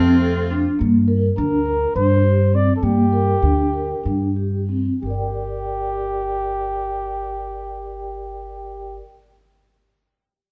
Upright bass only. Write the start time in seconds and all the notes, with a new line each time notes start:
Already playing: F2
0.81 G2
1.38 D2
1.96 G2
2.83 G2
3.42 D2
4.05 G2
5.03 G1